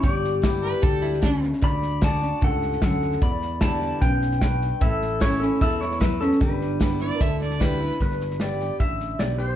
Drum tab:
HH |----p-------p---|----p-------p---|----p-------p---|----p-------p---|
SD |o-o-o-o-o-ooo-oo|o-o-o-o-o-ooo-oo|o-o-o-o-o-ooo-o-|o-o-o-o-o-ooo-oo|
BD |o---o---o---o---|o---o---o---o---|o---o---o---o---|o---o---o---o---|

HH |----p-------p---|----p-------p---|
SD |o-o-o-o-o-ooo-oo|ooooo-o-o-o-o-o-|
BD |o---o---o---o---|o-------o-------|